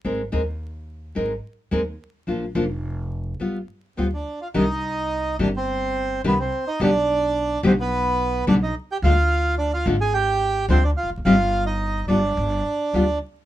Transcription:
<<
  \new Staff \with { instrumentName = "Bandoneon" } { \time 4/4 \key g \phrygian \tempo 4 = 107 r1 | r2. <c' c''>16 <d' d''>8 <f' f''>16 | \key c \minor <ees' ees''>4. <d' d''>16 <c' c''>4~ <c' c''>16 <b b'>16 <c' c''>8 <ees' ees''>16 | <d' d''>4. <c' c''>16 <b b'>4~ <b b'>16 <d' d''>16 <ees' ees''>8 <g' g''>16 |
<f' f''>4 <d' d''>16 <f' f''>8 <aes' aes''>16 <g' g''>4 <c' c''>16 <d' d''>16 <f' f''>8 | <f' f''>8. <ees' ees''>8. <d' d''>2 r8 | }
  \new Staff \with { instrumentName = "Nylon-string guitar" } { \time 4/4 \key g \phrygian <aes c' ees' bes'>8 <aes c' ees' bes'>8 r4 <aes c' ees' bes'>8 r8 <aes c' ees' bes'>8 r8 | <f bes d' f'>8 <f bes d' f'>8 r4 <g b f'>8 r8 <g b f'>8 r8 | \key c \minor <c ees g d' g'>8 r4 <c ees g d' g'>8 r4 <c ees g d' g'>8 r8 | <b, d g b g'>8 r4 <b, d g b g'>8 r4 <b, d g b g'>8 r8 |
<d aes d' f'>8 r4 <d aes d' f'>8 r4 <d aes d' f'>8 r8 | <c g c' ees' g'>8 r4 <g b f'>8 r4 <g b f'>8 r8 | }
  \new Staff \with { instrumentName = "Upright bass" } { \clef bass \time 4/4 \key g \phrygian aes,,16. r32 ees,4~ ees,16. r32 aes,,16. r8 r32 ees,16. r8 r32 | bes,,16. r32 f,,4~ f,,16. r32 g,,16. r8 r32 d,16. r8 r32 | \key c \minor c,4~ c,16. r32 g,,4~ g,,16. r32 c,16. r8 r32 | b,,4~ b,,16. r32 b,,4~ b,,16. r32 b,,16. r8 r32 |
d,4~ d,16. r32 aes,,4~ aes,,16. r32 d,16. r16 e,,32 f,,32 fis,,32 | g,,4~ g,,16. r32 g,,16. r32 g,,16. r8 r32 d,16. r8 r32 | }
>>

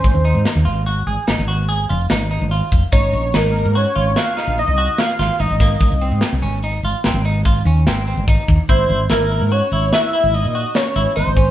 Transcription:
<<
  \new Staff \with { instrumentName = "Analog synth lead" } { \time 7/4 \key aes \mixolydian \tempo 4 = 146 c''4 r1. | des''4 bes'4 des''4 f''4 ees''4 \tuplet 3/2 { f''4~ f''16 f''16 } ees''4~ | ees''4 r1. | c''4 bes'4 des''4 fes''4 ees''4 des''4 c''4 | }
  \new Staff \with { instrumentName = "Clean electric guitar" } { \time 7/4 \key aes \mixolydian des'8 ees'4 f'8 ges'8 aes'8 ees'8 ges'8 aes'8 f'8 ees'8 ees'8 f'4 | ees'4 ees'4 ges'8 f'8 ges'8 ees'4 ges'4 f'8 ees'8 bes8~ | bes8 c'4 des'8 ees'8 f'8 c'8 ees'8 f'8 des'8 c'8 c'8 ees'4 | fes'4 fes'4 ges'8 fes'8 ges'8 fes'4 ges'4 fes'8 ees'8 des'8 | }
  \new Staff \with { instrumentName = "Fretless electric bass" } { \clef bass \time 7/4 \key aes \mixolydian aes,,16 ees,8 aes,16 r16 ees,16 aes,,4 aes,,16 r16 aes,,16 aes,,4~ aes,,16 f,,8 aes,,8. aes,,8 r16 f,,16 r16 | aes,,8 bes,,8 aes,,8. aes,8 r16 aes,,8 r8. bes,,8 c,8 r8. aes,,16 r16 aes,,16 aes,,8. | aes,,16 c,8 aes,16 r16 c,16 aes,,4 aes,,16 r16 aes,,16 aes,,4~ aes,,16 ees,8 aes,,8. aes,,8 r16 ees,16 r16 | aes,,8 aes,,8 aes,,8. aes,8 r16 aes,,8 r8. aes,,8 bes,8 r8. aes,,16 r16 aes,,16 aes,,8. | }
  \new DrumStaff \with { instrumentName = "Drums" } \drummode { \time 7/4 <hh bd>8 hh8 <hh sn>8 hh8 hh8 hh8 <hh sn>8 hh8 hh8 hh8 <hh sn>8 hh8 hh8 <hh bd>8 | <hh bd>8 hh8 <hh sn>8 hh8 hh8 hh8 <hh sn>8 <hh sn>8 hh8 hh8 <hh sn>8 <hh sn>8 hh8 <hh bd sn>8 | <hh bd>8 hh8 <hh sn>8 hh8 hh8 hh8 <hh sn>8 hh8 <hh bd>8 hh8 <hh sn>8 hh8 <hh bd>8 <hh bd>8 | <hh bd>8 hh8 <hh sn>8 hh8 hh8 hh8 <hh sn>8 hh8 hh8 hh8 <hh sn>8 hh8 hh8 <hh bd>8 | }
>>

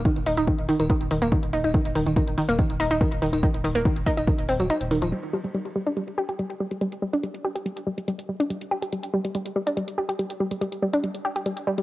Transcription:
<<
  \new Staff \with { instrumentName = "Synth arpeggio sound" } { \clef bass \time 4/4 \key c \dorian \tempo 4 = 142 ees16 r16 ees'16 ees'16 ees16 r16 ees16 ees16 ees16 r16 ees16 bes16 ees16 r16 ees'16 ees'16 | ees16 r16 ees16 ees16 ees16 r16 ees16 bes16 ees16 r16 ees'16 ees'16 ees16 r16 ees16 ees16 | ees16 r16 ees16 bes16 ees16 r16 ees'16 ees'16 ees16 r16 c'16 ges16 ees'16 r16 ees16 f16 | g16 r16 g16 g16 g16 r16 g16 d'16 g16 r16 g'16 g'16 g16 r16 g16 g16 |
g16 r16 g16 d'16 g16 r16 g'16 g'16 g16 r16 g16 g16 g16 r16 g16 d'16 | g16 r16 g'16 g'16 g16 r16 g16 g16 g16 r16 g16 d'16 g16 r16 g'16 g'16 | g16 r16 g16 g16 g16 r16 g16 d'16 g16 r16 g'16 g'16 g16 r16 g16 g16 | }
  \new Staff \with { instrumentName = "Sub bass" } { \clef bass \time 4/4 \key c \dorian r16 ees,,16 ees,,16 ees,,16 r16 ees,,16 r16 ees,,16 r16 ees,,16 ees,,16 ees,,16 r16 ees,,16 ees,,16 ees,,16 | r16 ees,,16 ees,,16 ees,,16 r16 ees,,16 r16 ees,,16 r16 ees,,16 ees,,16 ees,,16 r16 ees,,16 ees,,16 ees,,16 | r16 ees,,16 ees,,16 ees,,16 r16 ees,,16 r16 ees,,16 r16 ees,,16 ees,,16 ees,,16 r16 ees,,16 ees,,16 ees,,16 | r1 |
r1 | r1 | r1 | }
  \new DrumStaff \with { instrumentName = "Drums" } \drummode { \time 4/4 <hh bd tamb>16 <hh tamb>16 hho16 <hh tamb>16 <hh bd>16 <hh tamb>16 hho16 <hh tamb>16 <hh bd tamb>16 <hh tamb>16 hho16 <hh tamb>16 <hh bd>16 <hh tamb>16 hho16 <hh tamb>16 | <hh bd>16 <hh tamb>16 hho16 <hh tamb>16 <hh bd tamb>16 <hh tamb>16 hho16 <hh tamb>16 <hh bd>16 <hh tamb>16 hho16 <hh tamb>16 <hh bd>16 <hh tamb>16 hho16 <hh tamb>16 | <hh bd>16 <hh tamb>16 hho16 <hh tamb>16 <hh bd>16 <hh tamb>16 <hho bd>16 <hh tamb>16 <hh bd tamb>16 <hh tamb>16 hho16 <hh tamb>16 <hh tamb>16 <hh tamb>16 hho16 <hh tamb>16 | <cymc hh>16 hh8 hh16 hh16 hh8 hh16 hh16 hh8 hh16 hh16 hh8 hh16 |
hh16 hh8 hh16 hh16 hh8 hh16 hh16 hh8 hh16 hh16 hh8 hh16 | hh16 hh8 hh16 hh16 hh8 hh16 hh16 hh8 hh16 hh16 hh8 hh16 | hh16 hh8 hh16 hh16 hh8 hh16 hh16 hh8 hh16 hh16 hh8 hh16 | }
>>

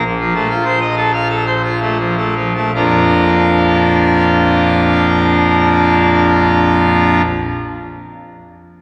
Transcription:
\new Staff \with { instrumentName = "Pipe organ" } { \time 4/4 \key bes \major \tempo 4 = 78 << { bes,16 f16 a16 f'16 c''16 ees''16 a'16 f''16 a'16 c''16 f'16 a16 f16 a16 f16 a16 | <bes,, f, f bes d' f'>1~ | <bes,, f, f bes d' f'>1 | } \\ { bes,,1 | r1 | r1 | } >> }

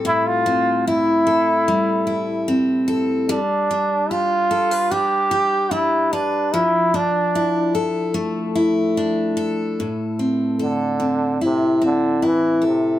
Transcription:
<<
  \new Staff \with { instrumentName = "Steel-string acoustic guitar" } { \time 4/4 \key a \minor \tempo 4 = 74 <a, g c' a'>8 c'8 e'8 a'8 g8 e'8 c'8 a'8 | g8 d'8 g'8 a'16 b'16 d'8 g'8 d'8 b'8 | f8 d'8 e'8 a'8 a8 e'8 d'8 a'8 | a,8 c'8 a'8 c'8 e'8 c'8 e'8 a'8 | }
  \new Staff \with { instrumentName = "Trombone" } { \time 4/4 \key a \minor e'16 f'8. e'2 r4 | d'4 f'4 g'4 e'8 d'8 | e'8 d'4 r2 r8 | r4 d4 c8 d8 e8 c8 | }
>>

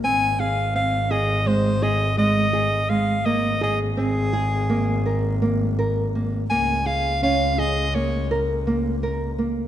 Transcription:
<<
  \new Staff \with { instrumentName = "Soprano saxophone" } { \time 9/8 \key aes \mixolydian \tempo 4. = 56 aes''8 f''8 f''8 ees''8 c''8 ees''8 ees''4 f''8 | ees''8 ees''8 aes'2 r4. | aes''8 f''8 f''8 ees''8 des''8 r2 | }
  \new Staff \with { instrumentName = "Nylon-string guitar" } { \time 9/8 \key aes \mixolydian c'8 aes'8 c'8 aes'8 aes8 aes'8 aes8 aes'8 aes8 | bes8 aes'8 c'8 aes'8 bes8 bes'8 bes8 bes'8 bes8 | bes8 aes'8 des'8 aes'8 bes8 bes'8 bes8 bes'8 bes8 | }
  \new Staff \with { instrumentName = "Double bass" } { \clef bass \time 9/8 \key aes \mixolydian aes,,1~ aes,,8 | aes,,1~ aes,,8 | des,1~ des,8 | }
>>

